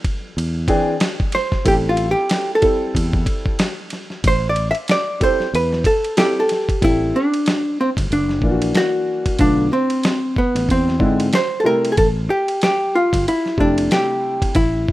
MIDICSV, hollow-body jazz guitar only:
0, 0, Header, 1, 2, 480
1, 0, Start_track
1, 0, Key_signature, 0, "minor"
1, 0, Tempo, 645161
1, 1232, Time_signature, 4, 2, 24, 8
1, 11101, End_track
2, 0, Start_track
2, 0, Title_t, "Hollow-body jazz guitar"
2, 0, Program_c, 0, 26
2, 1002, Note_on_c, 0, 72, 95
2, 1221, Note_off_c, 0, 72, 0
2, 1249, Note_on_c, 0, 67, 95
2, 1290, Note_off_c, 0, 67, 0
2, 1407, Note_on_c, 0, 65, 78
2, 1564, Note_off_c, 0, 65, 0
2, 1571, Note_on_c, 0, 67, 91
2, 1860, Note_off_c, 0, 67, 0
2, 1899, Note_on_c, 0, 69, 85
2, 2576, Note_off_c, 0, 69, 0
2, 3181, Note_on_c, 0, 72, 98
2, 3331, Note_off_c, 0, 72, 0
2, 3344, Note_on_c, 0, 74, 85
2, 3478, Note_off_c, 0, 74, 0
2, 3503, Note_on_c, 0, 76, 99
2, 3542, Note_off_c, 0, 76, 0
2, 3655, Note_on_c, 0, 74, 101
2, 3868, Note_off_c, 0, 74, 0
2, 3894, Note_on_c, 0, 72, 97
2, 4107, Note_off_c, 0, 72, 0
2, 4131, Note_on_c, 0, 71, 90
2, 4346, Note_off_c, 0, 71, 0
2, 4363, Note_on_c, 0, 69, 90
2, 4595, Note_off_c, 0, 69, 0
2, 4598, Note_on_c, 0, 67, 84
2, 4611, Note_off_c, 0, 67, 0
2, 4611, Note_on_c, 0, 67, 95
2, 4760, Note_on_c, 0, 69, 76
2, 5054, Note_off_c, 0, 69, 0
2, 5089, Note_off_c, 0, 67, 0
2, 5092, Note_on_c, 0, 64, 89
2, 5325, Note_on_c, 0, 62, 84
2, 5329, Note_off_c, 0, 64, 0
2, 5805, Note_off_c, 0, 62, 0
2, 5808, Note_on_c, 0, 60, 78
2, 5870, Note_off_c, 0, 60, 0
2, 6047, Note_on_c, 0, 62, 80
2, 6490, Note_off_c, 0, 62, 0
2, 6526, Note_on_c, 0, 66, 95
2, 6998, Note_on_c, 0, 62, 86
2, 7013, Note_off_c, 0, 66, 0
2, 7235, Note_off_c, 0, 62, 0
2, 7238, Note_on_c, 0, 60, 83
2, 7721, Note_off_c, 0, 60, 0
2, 7724, Note_on_c, 0, 59, 83
2, 7965, Note_off_c, 0, 59, 0
2, 7970, Note_on_c, 0, 60, 85
2, 8411, Note_off_c, 0, 60, 0
2, 8444, Note_on_c, 0, 72, 102
2, 8621, Note_off_c, 0, 72, 0
2, 8630, Note_on_c, 0, 69, 77
2, 8673, Note_off_c, 0, 69, 0
2, 8677, Note_on_c, 0, 70, 100
2, 8866, Note_off_c, 0, 70, 0
2, 8869, Note_on_c, 0, 68, 71
2, 8910, Note_off_c, 0, 68, 0
2, 8913, Note_on_c, 0, 69, 98
2, 8978, Note_off_c, 0, 69, 0
2, 9153, Note_on_c, 0, 67, 90
2, 9393, Note_off_c, 0, 67, 0
2, 9402, Note_on_c, 0, 67, 96
2, 9638, Note_on_c, 0, 65, 88
2, 9644, Note_off_c, 0, 67, 0
2, 9879, Note_off_c, 0, 65, 0
2, 9882, Note_on_c, 0, 64, 82
2, 10118, Note_off_c, 0, 64, 0
2, 10121, Note_on_c, 0, 62, 83
2, 10340, Note_off_c, 0, 62, 0
2, 10357, Note_on_c, 0, 67, 91
2, 10831, Note_on_c, 0, 64, 89
2, 10849, Note_off_c, 0, 67, 0
2, 11101, Note_off_c, 0, 64, 0
2, 11101, End_track
0, 0, End_of_file